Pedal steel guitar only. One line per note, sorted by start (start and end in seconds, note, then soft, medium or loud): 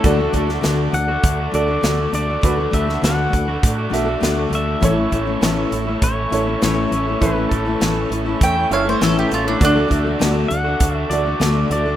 0.94 1.56 F#5 medium
1.55 2.14 D5 loud
2.15 2.76 D5 loud
2.74 3.02 E5 medium
3.05 4.55 F#5 loud
4.55 5.99 E5 medium
6.04 6.63 C#5 medium
6.65 7.25 C#5 medium
7.21 7.53 B4 medium
7.49 8.36 A4 medium
10.48 10.97 F#5 loud
10.97 11.11 E5 loud
11.10 11.71 D5 medium
11.72 11.96 D5 medium